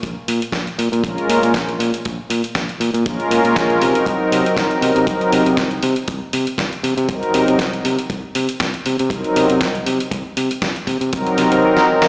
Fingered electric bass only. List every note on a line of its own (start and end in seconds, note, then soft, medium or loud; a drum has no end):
0.03 0.14 A#1 medium
0.28 0.39 A#2 medium
0.52 0.64 A#1 medium
0.79 0.89 A#2 loud
0.92 1.01 A#2 medium
1.03 1.14 A#1 medium
1.29 1.40 A#2 loud
1.43 1.52 A#2 medium
1.54 1.74 A#1 medium
1.79 1.90 A#2 loud
2.06 2.16 A#1 medium
2.30 2.41 A#2 medium
2.55 2.66 A#1 medium
2.80 2.91 A#2 medium
2.94 3.03 A#2 medium
3.31 3.41 A#2 loud
3.44 3.53 A#2 medium
3.56 3.76 A#1 medium
3.81 3.92 C3 loud
4.06 4.17 C2 medium
4.32 4.42 C3 medium
4.56 4.67 C2 medium
4.82 4.93 C3 medium
4.96 5.05 C3 loud
5.07 5.18 C2 loud
5.32 5.43 C3 loud
5.46 5.55 C3 medium
5.57 5.77 C2 medium
5.83 5.94 C3 loud
6.08 6.19 C2 medium
6.33 6.44 C3 medium
6.47 muted fingered electric bass stroke soft
6.58 6.69 C2 medium
6.83 6.94 C3 medium
6.97 7.06 C3 loud
7.09 7.19 C2 medium
7.34 7.45 C3 medium
7.48 7.57 C3 medium
7.59 7.79 C2 medium
7.85 7.95 C3 loud
8.10 8.20 C2 loud
8.35 8.46 C3 medium
8.61 8.71 C2 medium
8.86 8.96 C3 medium
9.00 9.08 C3 loud
9.10 9.21 C2 loud
9.36 9.47 C3 loud
9.50 9.59 C3 loud
9.61 9.81 C2 medium
9.86 9.97 C3 loud
10.11 10.22 C2 loud
10.37 10.47 C3 medium
10.51 muted fingered electric bass stroke soft
10.62 10.72 C2 medium
10.87 10.98 C3 medium
11.01 11.10 C3 loud
11.13 11.23 C2 medium
11.38 11.48 C3 medium
11.52 11.60 C3 medium